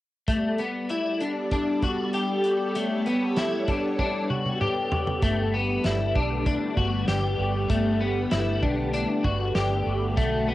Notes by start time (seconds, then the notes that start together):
0.28 G3 A3 B3 A4 D5, kick, closed hi-hat
0.58 B3, closed hi-hat
0.89 E4, closed hi-hat
1.20 D4, closed hi-hat
1.51 D4, kick, closed hi-hat
1.82 F#4, kick, closed hi-hat
2.13 G4, closed hi-hat
2.44 closed hi-hat
2.75 A3 C#5, closed hi-hat
3.06 B3, closed hi-hat
3.37 E4, snare, closed hi-hat
3.68 D4, kick, closed hi-hat
3.99 D4, kick, high tom
4.30 F#4, mid tom
4.46 mid tom
4.61 G4, mid tom
4.92 floor tom
5.07 floor tom
5.22 G1 D3 G3 A3 B3, kick, closed hi-hat
5.54 B3
5.84 G1 E4, snare, closed hi-hat
6.15 B1 D4, kick
6.46 D4, kick, closed hi-hat
6.77 G1 F#4, kick
7.08 G1 G4, snare, closed hi-hat
7.39 G1
7.70 G1 A3, kick, closed hi-hat
8.01 B3
8.31 G1 E4, snare, closed hi-hat
8.62 B1 D4, kick
8.93 D4, closed hi-hat
9.24 G1 F#4, kick
9.55 G1 G4, snare, closed hi-hat
9.86 G1
10.17 B1 A3 B3 F#4, kick, closed hi-hat
10.48 B3